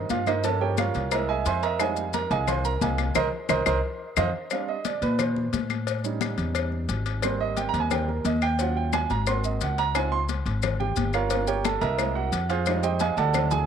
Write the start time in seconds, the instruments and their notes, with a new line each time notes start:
0.10 upright bass G2, grand piano F4 F5, cowbell, high conga, maracas
0.27 grand piano D#4 A#4 C5 D#5, cowbell, high conga, claves, maracas
0.43 grand piano F3 A#3 C#4 A4 A5, cowbell, high conga, maracas
0.61 grand piano G4 A#4 C#5 G5, high conga
0.77 grand piano F4 A#4 C#5 F5, cowbell, high conga, claves, maracas
0.94 upright bass C2, cowbell, high conga, maracas
1.11 grand piano G#3 A#3 E4 A#4 D#5 E5 A#5, cowbell, high conga, claves, maracas
1.29 grand piano G#4 D#5 E5 G#5, high conga
1.46 upright bass F2, grand piano C5 E5 G#5 C6, cowbell, high conga, maracas
1.63 grand piano A#4 D#5 E5 A#5, cowbell, high conga, maracas
1.79 grand piano G3 G#3 D#4 G#4 D#5 F5 G#5, cowbell, high conga, claves, maracas
1.96 high conga, maracas
2.13 grand piano A#4 A#5, cowbell, high conga, maracas
2.31 upright bass C2, grand piano G#4 D#5 F5 G#5, cowbell, maracas
2.48 grand piano C5 F5 G#5 C6, cowbell, high conga, low conga, claves, maracas
2.65 grand piano A#4 A#5, high conga, maracas
2.81 upright bass C2, grand piano G#4 D#5 F5 G#5, cowbell, high conga, maracas
2.98 cowbell, high conga, claves, maracas
3.15 upright bass C2, grand piano A#4 C5 D#5, cowbell, low conga, claves, maracas
3.49 upright bass C2, grand piano A#4 C5 D#5, cowbell, low conga, claves, maracas
3.66 upright bass C2, grand piano A#4 C5 D#5, cowbell, low conga, claves, maracas
4.17 upright bass F2, grand piano C5 D#5 F5, cowbell, low conga, claves, maracas
4.50 grand piano G3 C4 D4 F5, cowbell, high conga, claves, maracas
4.68 grand piano D#5, high conga
4.85 grand piano D5, cowbell, high conga, maracas
5.02 upright bass A#2, grand piano B4, cowbell, high conga, maracas
5.19 grand piano C5, cowbell, high conga, low conga, claves, maracas
5.36 high conga, low conga
5.53 upright bass A2, cowbell, high conga, maracas
5.70 cowbell, high conga, claves, maracas
5.87 cowbell, high conga, maracas
6.04 grand piano G3 C#4 D#4, high conga, maracas
6.21 cowbell, high conga, claves, maracas
6.38 upright bass E2, cowbell, high conga, maracas
6.55 cowbell, high conga, claves, maracas
6.72 high conga
6.89 upright bass G#1, cowbell, high conga, maracas
7.06 cowbell, high conga, maracas
7.22 grand piano G3 A#3 C4 C5, cowbell, high conga, claves, maracas
7.40 grand piano D#5, high conga
7.57 grand piano G5, cowbell, high conga, maracas
7.69 grand piano A#5
7.74 upright bass D#2, cowbell, high conga, maracas
7.80 grand piano G#5
7.91 grand piano G3 A#3 C4 G5, cowbell, high conga, low conga, claves, maracas
8.08 grand piano A#4, high conga
8.25 upright bass D#2, grand piano D#5, cowbell, high conga, maracas
8.42 grand piano G5, cowbell, claves, maracas
8.59 grand piano F#3 C#4 F4 F#5, cowbell, high conga, maracas
8.77 grand piano G5, high conga
8.93 grand piano G#5, cowbell, high conga, claves, maracas
9.10 upright bass G#1, grand piano A#5, cowbell, high conga, maracas
9.27 grand piano A#3 C4 F#4 C6, cowbell, high conga, claves, maracas
9.44 grand piano D#5, high conga, maracas
9.61 upright bass C#2, grand piano F#5, cowbell, high conga, maracas
9.78 grand piano A#5, cowbell, high conga, maracas
9.95 grand piano C4 D#4 F4 G#5, cowbell, high conga, claves, maracas
10.12 grand piano C6, high conga
10.29 cowbell, high conga, maracas
10.46 upright bass G#1, cowbell, high conga, maracas
10.62 cowbell, high conga, low conga, claves, maracas
10.80 grand piano G4 G5, high conga, low conga
10.96 upright bass G1, cowbell, high conga, maracas
11.13 grand piano F4 A#4 C#5 F5, cowbell, claves, maracas
11.30 grand piano A#3 C#4 F4, cowbell, high conga, maracas
11.47 grand piano G4 A#4 C#5 G5, high conga, maracas
11.64 grand piano A4 A5, cowbell, high conga, claves, maracas
11.81 upright bass C2, grand piano A#4 D#5 E5 A#5, cowbell, high conga, maracas
11.98 grand piano G#3 A#3 E4, cowbell, high conga, claves, maracas
12.15 grand piano F#4 F#5, high conga
12.32 upright bass F2, cowbell, high conga, maracas
12.49 grand piano F4 G#4 C5 F5, cowbell, high conga, maracas
12.66 grand piano G3 G#3 D#4, cowbell, high conga, claves, maracas
12.83 grand piano G4 C5 D#5 G5, high conga, maracas
12.99 grand piano G#4 D#5 F5 G#5, cowbell, high conga, maracas
13.17 upright bass D2, grand piano A4 D5 F#5 A5, cowbell, high conga, maracas
13.34 grand piano F#3 C4 E4, cowbell, high conga, low conga, claves, maracas
13.51 grand piano G#4 G#5, high conga, low conga, maracas